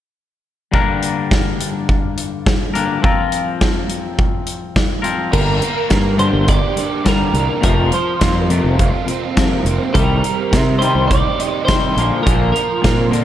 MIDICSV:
0, 0, Header, 1, 6, 480
1, 0, Start_track
1, 0, Key_signature, -2, "minor"
1, 0, Tempo, 576369
1, 610, Time_signature, 4, 2, 24, 8
1, 11028, End_track
2, 0, Start_track
2, 0, Title_t, "Clean electric guitar"
2, 0, Program_c, 0, 27
2, 4441, Note_on_c, 0, 70, 74
2, 5154, Note_off_c, 0, 70, 0
2, 5158, Note_on_c, 0, 72, 75
2, 5403, Note_off_c, 0, 72, 0
2, 5406, Note_on_c, 0, 74, 83
2, 5851, Note_off_c, 0, 74, 0
2, 5899, Note_on_c, 0, 70, 81
2, 6360, Note_off_c, 0, 70, 0
2, 6370, Note_on_c, 0, 70, 78
2, 6610, Note_off_c, 0, 70, 0
2, 6613, Note_on_c, 0, 72, 70
2, 7055, Note_off_c, 0, 72, 0
2, 8280, Note_on_c, 0, 70, 78
2, 8980, Note_off_c, 0, 70, 0
2, 8984, Note_on_c, 0, 72, 76
2, 9219, Note_off_c, 0, 72, 0
2, 9223, Note_on_c, 0, 74, 87
2, 9697, Note_off_c, 0, 74, 0
2, 9700, Note_on_c, 0, 72, 85
2, 10163, Note_off_c, 0, 72, 0
2, 10186, Note_on_c, 0, 70, 75
2, 10418, Note_off_c, 0, 70, 0
2, 10428, Note_on_c, 0, 70, 67
2, 10889, Note_off_c, 0, 70, 0
2, 11028, End_track
3, 0, Start_track
3, 0, Title_t, "Overdriven electric guitar"
3, 0, Program_c, 1, 29
3, 4449, Note_on_c, 1, 58, 69
3, 4674, Note_off_c, 1, 58, 0
3, 4684, Note_on_c, 1, 58, 58
3, 4914, Note_off_c, 1, 58, 0
3, 4924, Note_on_c, 1, 58, 64
3, 5162, Note_on_c, 1, 62, 57
3, 5411, Note_on_c, 1, 67, 70
3, 5640, Note_off_c, 1, 62, 0
3, 5650, Note_on_c, 1, 62, 62
3, 5875, Note_off_c, 1, 58, 0
3, 5885, Note_on_c, 1, 58, 69
3, 6122, Note_off_c, 1, 62, 0
3, 6132, Note_on_c, 1, 62, 62
3, 6364, Note_off_c, 1, 58, 0
3, 6367, Note_off_c, 1, 67, 0
3, 6368, Note_off_c, 1, 62, 0
3, 6369, Note_on_c, 1, 53, 71
3, 6600, Note_off_c, 1, 53, 0
3, 6610, Note_on_c, 1, 53, 65
3, 6847, Note_on_c, 1, 58, 63
3, 7086, Note_on_c, 1, 60, 61
3, 7326, Note_on_c, 1, 65, 75
3, 7571, Note_off_c, 1, 60, 0
3, 7574, Note_on_c, 1, 60, 65
3, 7801, Note_off_c, 1, 58, 0
3, 7808, Note_off_c, 1, 53, 0
3, 7811, Note_on_c, 1, 58, 68
3, 8047, Note_off_c, 1, 60, 0
3, 8051, Note_on_c, 1, 60, 64
3, 8287, Note_off_c, 1, 65, 0
3, 8289, Note_off_c, 1, 58, 0
3, 8298, Note_on_c, 1, 55, 70
3, 8523, Note_off_c, 1, 55, 0
3, 8533, Note_on_c, 1, 55, 62
3, 8768, Note_off_c, 1, 60, 0
3, 8768, Note_on_c, 1, 60, 63
3, 9002, Note_on_c, 1, 63, 61
3, 9243, Note_on_c, 1, 67, 68
3, 9478, Note_off_c, 1, 63, 0
3, 9488, Note_on_c, 1, 63, 62
3, 9718, Note_off_c, 1, 60, 0
3, 9728, Note_on_c, 1, 60, 64
3, 9733, Note_off_c, 1, 55, 0
3, 9967, Note_on_c, 1, 53, 67
3, 9968, Note_off_c, 1, 67, 0
3, 9969, Note_off_c, 1, 60, 0
3, 9970, Note_off_c, 1, 63, 0
3, 10195, Note_off_c, 1, 53, 0
3, 10205, Note_on_c, 1, 53, 64
3, 10432, Note_off_c, 1, 53, 0
3, 10442, Note_on_c, 1, 53, 65
3, 10689, Note_on_c, 1, 60, 61
3, 10935, Note_on_c, 1, 62, 65
3, 11028, Note_off_c, 1, 53, 0
3, 11028, Note_off_c, 1, 60, 0
3, 11028, Note_off_c, 1, 62, 0
3, 11028, End_track
4, 0, Start_track
4, 0, Title_t, "Clean electric guitar"
4, 0, Program_c, 2, 27
4, 595, Note_on_c, 2, 43, 83
4, 600, Note_on_c, 2, 50, 86
4, 607, Note_on_c, 2, 55, 73
4, 611, Note_on_c, 2, 58, 81
4, 614, Note_on_c, 2, 62, 80
4, 620, Note_on_c, 2, 70, 94
4, 2266, Note_off_c, 2, 43, 0
4, 2268, Note_off_c, 2, 50, 0
4, 2271, Note_off_c, 2, 55, 0
4, 2275, Note_off_c, 2, 62, 0
4, 2275, Note_off_c, 2, 70, 0
4, 2279, Note_on_c, 2, 70, 76
4, 2288, Note_off_c, 2, 58, 0
4, 2290, Note_on_c, 2, 62, 75
4, 2291, Note_on_c, 2, 58, 71
4, 2295, Note_on_c, 2, 55, 66
4, 2303, Note_on_c, 2, 43, 60
4, 2303, Note_on_c, 2, 50, 67
4, 2508, Note_off_c, 2, 55, 0
4, 2511, Note_on_c, 2, 53, 77
4, 2514, Note_off_c, 2, 62, 0
4, 2517, Note_off_c, 2, 58, 0
4, 2520, Note_off_c, 2, 43, 0
4, 2520, Note_off_c, 2, 50, 0
4, 2520, Note_on_c, 2, 60, 84
4, 2529, Note_on_c, 2, 65, 94
4, 2537, Note_off_c, 2, 70, 0
4, 2540, Note_on_c, 2, 70, 84
4, 4170, Note_off_c, 2, 70, 0
4, 4180, Note_off_c, 2, 65, 0
4, 4180, Note_on_c, 2, 70, 80
4, 4182, Note_off_c, 2, 53, 0
4, 4186, Note_off_c, 2, 60, 0
4, 4190, Note_on_c, 2, 65, 74
4, 4196, Note_on_c, 2, 60, 67
4, 4208, Note_on_c, 2, 53, 68
4, 4418, Note_off_c, 2, 70, 0
4, 4422, Note_off_c, 2, 65, 0
4, 4425, Note_off_c, 2, 60, 0
4, 4431, Note_off_c, 2, 53, 0
4, 4433, Note_on_c, 2, 50, 90
4, 4435, Note_on_c, 2, 43, 85
4, 4445, Note_on_c, 2, 55, 89
4, 4664, Note_off_c, 2, 50, 0
4, 4665, Note_off_c, 2, 43, 0
4, 4670, Note_off_c, 2, 55, 0
4, 4682, Note_on_c, 2, 43, 53
4, 4684, Note_on_c, 2, 50, 63
4, 4898, Note_off_c, 2, 43, 0
4, 4899, Note_off_c, 2, 50, 0
4, 4912, Note_on_c, 2, 43, 66
4, 4919, Note_on_c, 2, 50, 72
4, 5133, Note_off_c, 2, 43, 0
4, 5137, Note_off_c, 2, 50, 0
4, 5144, Note_on_c, 2, 43, 87
4, 5149, Note_on_c, 2, 50, 77
4, 5155, Note_on_c, 2, 55, 89
4, 5379, Note_off_c, 2, 43, 0
4, 5382, Note_off_c, 2, 50, 0
4, 5384, Note_off_c, 2, 55, 0
4, 5394, Note_on_c, 2, 43, 64
4, 5395, Note_on_c, 2, 50, 71
4, 5614, Note_off_c, 2, 43, 0
4, 5615, Note_off_c, 2, 50, 0
4, 5628, Note_on_c, 2, 43, 57
4, 5634, Note_on_c, 2, 50, 63
4, 5851, Note_off_c, 2, 43, 0
4, 5854, Note_off_c, 2, 50, 0
4, 5866, Note_on_c, 2, 43, 78
4, 5868, Note_on_c, 2, 50, 83
4, 5875, Note_on_c, 2, 55, 88
4, 6096, Note_off_c, 2, 43, 0
4, 6101, Note_off_c, 2, 50, 0
4, 6105, Note_off_c, 2, 55, 0
4, 6106, Note_on_c, 2, 43, 60
4, 6110, Note_on_c, 2, 50, 69
4, 6330, Note_off_c, 2, 43, 0
4, 6333, Note_off_c, 2, 50, 0
4, 6340, Note_on_c, 2, 41, 87
4, 6343, Note_on_c, 2, 48, 87
4, 6347, Note_on_c, 2, 53, 93
4, 6577, Note_off_c, 2, 41, 0
4, 6579, Note_off_c, 2, 48, 0
4, 6581, Note_off_c, 2, 53, 0
4, 6596, Note_on_c, 2, 41, 57
4, 6600, Note_on_c, 2, 48, 64
4, 6816, Note_off_c, 2, 41, 0
4, 6818, Note_off_c, 2, 48, 0
4, 6835, Note_on_c, 2, 41, 65
4, 6836, Note_on_c, 2, 48, 78
4, 7055, Note_off_c, 2, 41, 0
4, 7056, Note_off_c, 2, 48, 0
4, 7080, Note_on_c, 2, 41, 83
4, 7086, Note_on_c, 2, 48, 83
4, 7087, Note_on_c, 2, 53, 82
4, 7307, Note_off_c, 2, 41, 0
4, 7311, Note_off_c, 2, 48, 0
4, 7311, Note_off_c, 2, 53, 0
4, 7319, Note_on_c, 2, 41, 57
4, 7325, Note_on_c, 2, 48, 69
4, 7538, Note_off_c, 2, 41, 0
4, 7541, Note_off_c, 2, 48, 0
4, 7548, Note_on_c, 2, 41, 66
4, 7554, Note_on_c, 2, 48, 61
4, 7772, Note_off_c, 2, 41, 0
4, 7775, Note_off_c, 2, 48, 0
4, 7793, Note_on_c, 2, 41, 73
4, 7803, Note_on_c, 2, 48, 78
4, 7804, Note_on_c, 2, 53, 85
4, 8016, Note_off_c, 2, 41, 0
4, 8019, Note_off_c, 2, 48, 0
4, 8026, Note_on_c, 2, 41, 58
4, 8029, Note_on_c, 2, 48, 67
4, 8030, Note_off_c, 2, 53, 0
4, 8252, Note_off_c, 2, 41, 0
4, 8253, Note_off_c, 2, 48, 0
4, 8269, Note_on_c, 2, 48, 75
4, 8275, Note_on_c, 2, 51, 82
4, 8278, Note_on_c, 2, 55, 92
4, 8503, Note_off_c, 2, 48, 0
4, 8506, Note_off_c, 2, 51, 0
4, 8508, Note_off_c, 2, 55, 0
4, 8518, Note_on_c, 2, 51, 63
4, 8519, Note_on_c, 2, 48, 57
4, 8738, Note_off_c, 2, 51, 0
4, 8739, Note_off_c, 2, 48, 0
4, 8754, Note_on_c, 2, 51, 73
4, 8755, Note_on_c, 2, 48, 66
4, 8977, Note_off_c, 2, 48, 0
4, 8977, Note_off_c, 2, 51, 0
4, 8999, Note_on_c, 2, 48, 83
4, 9007, Note_on_c, 2, 51, 95
4, 9011, Note_on_c, 2, 55, 94
4, 9229, Note_off_c, 2, 48, 0
4, 9234, Note_off_c, 2, 51, 0
4, 9235, Note_off_c, 2, 55, 0
4, 9240, Note_on_c, 2, 48, 64
4, 9247, Note_on_c, 2, 51, 67
4, 9461, Note_off_c, 2, 48, 0
4, 9464, Note_off_c, 2, 51, 0
4, 9486, Note_on_c, 2, 48, 58
4, 9491, Note_on_c, 2, 51, 61
4, 9704, Note_off_c, 2, 48, 0
4, 9706, Note_off_c, 2, 51, 0
4, 9721, Note_on_c, 2, 48, 81
4, 9722, Note_on_c, 2, 51, 75
4, 9730, Note_on_c, 2, 55, 88
4, 9951, Note_off_c, 2, 48, 0
4, 9952, Note_off_c, 2, 51, 0
4, 9956, Note_off_c, 2, 55, 0
4, 9966, Note_on_c, 2, 46, 82
4, 9976, Note_on_c, 2, 50, 81
4, 9981, Note_on_c, 2, 58, 90
4, 10194, Note_off_c, 2, 46, 0
4, 10197, Note_off_c, 2, 50, 0
4, 10202, Note_off_c, 2, 58, 0
4, 10203, Note_on_c, 2, 46, 86
4, 10207, Note_on_c, 2, 50, 86
4, 10212, Note_on_c, 2, 58, 96
4, 10433, Note_off_c, 2, 46, 0
4, 10433, Note_off_c, 2, 50, 0
4, 10438, Note_off_c, 2, 58, 0
4, 10443, Note_on_c, 2, 50, 56
4, 10444, Note_on_c, 2, 46, 56
4, 10664, Note_off_c, 2, 50, 0
4, 10665, Note_off_c, 2, 46, 0
4, 10675, Note_on_c, 2, 46, 71
4, 10680, Note_on_c, 2, 50, 79
4, 10901, Note_off_c, 2, 46, 0
4, 10903, Note_off_c, 2, 50, 0
4, 10909, Note_on_c, 2, 46, 75
4, 10919, Note_on_c, 2, 50, 82
4, 10919, Note_on_c, 2, 58, 81
4, 11028, Note_off_c, 2, 46, 0
4, 11028, Note_off_c, 2, 50, 0
4, 11028, Note_off_c, 2, 58, 0
4, 11028, End_track
5, 0, Start_track
5, 0, Title_t, "Fingered electric bass"
5, 0, Program_c, 3, 33
5, 4442, Note_on_c, 3, 31, 86
5, 4656, Note_off_c, 3, 31, 0
5, 4918, Note_on_c, 3, 43, 74
5, 5240, Note_off_c, 3, 43, 0
5, 5273, Note_on_c, 3, 31, 80
5, 5490, Note_off_c, 3, 31, 0
5, 6111, Note_on_c, 3, 36, 75
5, 6223, Note_off_c, 3, 36, 0
5, 6362, Note_on_c, 3, 29, 86
5, 6575, Note_off_c, 3, 29, 0
5, 6840, Note_on_c, 3, 41, 75
5, 7161, Note_off_c, 3, 41, 0
5, 7197, Note_on_c, 3, 29, 84
5, 7413, Note_off_c, 3, 29, 0
5, 8035, Note_on_c, 3, 29, 81
5, 8146, Note_off_c, 3, 29, 0
5, 8285, Note_on_c, 3, 36, 86
5, 8498, Note_off_c, 3, 36, 0
5, 8769, Note_on_c, 3, 48, 78
5, 9088, Note_off_c, 3, 48, 0
5, 9119, Note_on_c, 3, 36, 79
5, 9337, Note_off_c, 3, 36, 0
5, 9967, Note_on_c, 3, 34, 76
5, 10075, Note_off_c, 3, 34, 0
5, 10213, Note_on_c, 3, 34, 88
5, 10426, Note_off_c, 3, 34, 0
5, 10694, Note_on_c, 3, 46, 74
5, 11014, Note_off_c, 3, 46, 0
5, 11028, End_track
6, 0, Start_track
6, 0, Title_t, "Drums"
6, 613, Note_on_c, 9, 36, 98
6, 696, Note_off_c, 9, 36, 0
6, 854, Note_on_c, 9, 42, 71
6, 937, Note_off_c, 9, 42, 0
6, 1094, Note_on_c, 9, 36, 99
6, 1097, Note_on_c, 9, 38, 94
6, 1177, Note_off_c, 9, 36, 0
6, 1181, Note_off_c, 9, 38, 0
6, 1337, Note_on_c, 9, 42, 79
6, 1420, Note_off_c, 9, 42, 0
6, 1574, Note_on_c, 9, 36, 85
6, 1657, Note_off_c, 9, 36, 0
6, 1813, Note_on_c, 9, 42, 77
6, 1896, Note_off_c, 9, 42, 0
6, 2052, Note_on_c, 9, 36, 106
6, 2055, Note_on_c, 9, 38, 101
6, 2136, Note_off_c, 9, 36, 0
6, 2139, Note_off_c, 9, 38, 0
6, 2293, Note_on_c, 9, 42, 76
6, 2376, Note_off_c, 9, 42, 0
6, 2531, Note_on_c, 9, 36, 102
6, 2615, Note_off_c, 9, 36, 0
6, 2766, Note_on_c, 9, 42, 72
6, 2850, Note_off_c, 9, 42, 0
6, 3008, Note_on_c, 9, 38, 98
6, 3009, Note_on_c, 9, 36, 99
6, 3092, Note_off_c, 9, 38, 0
6, 3093, Note_off_c, 9, 36, 0
6, 3244, Note_on_c, 9, 42, 72
6, 3327, Note_off_c, 9, 42, 0
6, 3487, Note_on_c, 9, 36, 91
6, 3570, Note_off_c, 9, 36, 0
6, 3721, Note_on_c, 9, 42, 70
6, 3804, Note_off_c, 9, 42, 0
6, 3964, Note_on_c, 9, 36, 104
6, 3966, Note_on_c, 9, 38, 103
6, 4048, Note_off_c, 9, 36, 0
6, 4050, Note_off_c, 9, 38, 0
6, 4199, Note_on_c, 9, 42, 71
6, 4282, Note_off_c, 9, 42, 0
6, 4441, Note_on_c, 9, 49, 84
6, 4442, Note_on_c, 9, 36, 103
6, 4524, Note_off_c, 9, 49, 0
6, 4526, Note_off_c, 9, 36, 0
6, 4680, Note_on_c, 9, 42, 60
6, 4763, Note_off_c, 9, 42, 0
6, 4916, Note_on_c, 9, 42, 82
6, 4919, Note_on_c, 9, 38, 97
6, 4922, Note_on_c, 9, 36, 101
6, 4999, Note_off_c, 9, 42, 0
6, 5002, Note_off_c, 9, 38, 0
6, 5005, Note_off_c, 9, 36, 0
6, 5157, Note_on_c, 9, 42, 60
6, 5240, Note_off_c, 9, 42, 0
6, 5396, Note_on_c, 9, 42, 78
6, 5400, Note_on_c, 9, 36, 95
6, 5480, Note_off_c, 9, 42, 0
6, 5484, Note_off_c, 9, 36, 0
6, 5639, Note_on_c, 9, 42, 64
6, 5722, Note_off_c, 9, 42, 0
6, 5877, Note_on_c, 9, 42, 79
6, 5880, Note_on_c, 9, 36, 101
6, 5880, Note_on_c, 9, 38, 97
6, 5960, Note_off_c, 9, 42, 0
6, 5963, Note_off_c, 9, 36, 0
6, 5963, Note_off_c, 9, 38, 0
6, 6118, Note_on_c, 9, 42, 59
6, 6201, Note_off_c, 9, 42, 0
6, 6358, Note_on_c, 9, 42, 81
6, 6360, Note_on_c, 9, 36, 103
6, 6441, Note_off_c, 9, 42, 0
6, 6443, Note_off_c, 9, 36, 0
6, 6595, Note_on_c, 9, 42, 55
6, 6679, Note_off_c, 9, 42, 0
6, 6838, Note_on_c, 9, 42, 75
6, 6841, Note_on_c, 9, 36, 101
6, 6841, Note_on_c, 9, 38, 103
6, 6921, Note_off_c, 9, 42, 0
6, 6924, Note_off_c, 9, 36, 0
6, 6924, Note_off_c, 9, 38, 0
6, 7081, Note_on_c, 9, 42, 57
6, 7164, Note_off_c, 9, 42, 0
6, 7323, Note_on_c, 9, 42, 68
6, 7324, Note_on_c, 9, 36, 90
6, 7407, Note_off_c, 9, 36, 0
6, 7407, Note_off_c, 9, 42, 0
6, 7562, Note_on_c, 9, 42, 55
6, 7645, Note_off_c, 9, 42, 0
6, 7803, Note_on_c, 9, 42, 76
6, 7805, Note_on_c, 9, 36, 97
6, 7805, Note_on_c, 9, 38, 102
6, 7886, Note_off_c, 9, 42, 0
6, 7888, Note_off_c, 9, 36, 0
6, 7889, Note_off_c, 9, 38, 0
6, 8045, Note_on_c, 9, 42, 56
6, 8128, Note_off_c, 9, 42, 0
6, 8286, Note_on_c, 9, 42, 78
6, 8287, Note_on_c, 9, 36, 101
6, 8369, Note_off_c, 9, 42, 0
6, 8370, Note_off_c, 9, 36, 0
6, 8529, Note_on_c, 9, 42, 54
6, 8612, Note_off_c, 9, 42, 0
6, 8768, Note_on_c, 9, 36, 98
6, 8770, Note_on_c, 9, 42, 80
6, 8772, Note_on_c, 9, 38, 103
6, 8851, Note_off_c, 9, 36, 0
6, 8853, Note_off_c, 9, 42, 0
6, 8855, Note_off_c, 9, 38, 0
6, 9011, Note_on_c, 9, 42, 55
6, 9095, Note_off_c, 9, 42, 0
6, 9251, Note_on_c, 9, 36, 94
6, 9251, Note_on_c, 9, 42, 70
6, 9334, Note_off_c, 9, 36, 0
6, 9335, Note_off_c, 9, 42, 0
6, 9493, Note_on_c, 9, 42, 55
6, 9576, Note_off_c, 9, 42, 0
6, 9730, Note_on_c, 9, 42, 81
6, 9731, Note_on_c, 9, 36, 100
6, 9733, Note_on_c, 9, 38, 109
6, 9813, Note_off_c, 9, 42, 0
6, 9815, Note_off_c, 9, 36, 0
6, 9816, Note_off_c, 9, 38, 0
6, 9974, Note_on_c, 9, 42, 59
6, 10058, Note_off_c, 9, 42, 0
6, 10216, Note_on_c, 9, 36, 106
6, 10217, Note_on_c, 9, 42, 85
6, 10299, Note_off_c, 9, 36, 0
6, 10300, Note_off_c, 9, 42, 0
6, 10458, Note_on_c, 9, 42, 56
6, 10542, Note_off_c, 9, 42, 0
6, 10696, Note_on_c, 9, 36, 101
6, 10696, Note_on_c, 9, 42, 77
6, 10699, Note_on_c, 9, 38, 95
6, 10779, Note_off_c, 9, 36, 0
6, 10780, Note_off_c, 9, 42, 0
6, 10782, Note_off_c, 9, 38, 0
6, 10938, Note_on_c, 9, 42, 55
6, 11021, Note_off_c, 9, 42, 0
6, 11028, End_track
0, 0, End_of_file